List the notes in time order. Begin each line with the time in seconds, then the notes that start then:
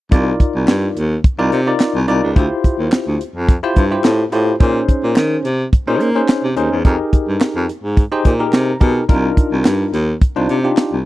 0.11 C2 D#4 F4 A#4 D5, kick, closed hi-hat
0.40 kick, closed hi-hat
0.55 C2
0.68 G2, snare, clap, closed hi-hat
0.96 D#2, closed hi-hat
1.24 kick, closed hi-hat
1.38 C2 D#4 F4 A#4 D5
1.52 C3, closed hi-hat
1.67 D#4 F4 A#4 D5
1.80 snare, clap, closed hi-hat
1.95 C2
2.08 C2 D#4 F4 A#4 D5, closed hi-hat
2.23 C#2
2.36 D2 E4 F4 G4 C5, kick, closed hi-hat
2.64 kick, closed hi-hat
2.79 D#2
2.92 snare, clap, closed hi-hat
3.07 D2
3.21 closed hi-hat
3.36 F2
3.49 kick, closed hi-hat
3.63 E4 F4 G4 C5
3.76 G2, kick, closed hi-hat
3.91 E4 F4 G4 C5
4.04 A2, snare, clap, closed hi-hat
4.32 A2 E4 F4 G4 C5, closed hi-hat
4.60 A#2 C#4 D#4 G#4 C5, kick, closed hi-hat
4.88 kick, closed hi-hat
5.03 A#2
5.16 D#3, snare, clap, closed hi-hat
5.45 C3, closed hi-hat
5.73 kick, closed hi-hat
5.87 A#2 C#4 D#4 G#4 C5
6.00 A#3, closed hi-hat
6.15 C#4 D#4 G#4 C5
6.29 snare, clap, closed hi-hat
6.44 C3
6.57 D#2 C#4 D#4 G#4 C5, closed hi-hat
6.72 E2
6.85 F2 D#4 G4 G#4 A#4, kick, closed hi-hat
7.13 kick, closed hi-hat
7.28 G2
7.41 snare, clap, closed hi-hat
7.56 F2
7.69 closed hi-hat
7.84 G#2
7.97 kick, closed hi-hat
8.11 D#4 G4 G#4 C5
8.25 A#2, kick, closed hi-hat
8.39 D#4 G4 G#4 A#4
8.53 C3 A#5, snare, clap, closed hi-hat
8.81 B2 D#4 G4 G#4 A#4, kick, closed hi-hat
9.09 C2 D4 D#4 F4 A#4, kick, closed hi-hat
9.37 kick, closed hi-hat
9.52 C2
9.65 G2, snare, clap, closed hi-hat
9.93 D#2, closed hi-hat
10.21 kick, closed hi-hat
10.36 C2 D4 D#4 F4 C5
10.49 C3, closed hi-hat
10.64 D4 D#4 F4 G4
10.77 snare, clap, closed hi-hat
10.92 C2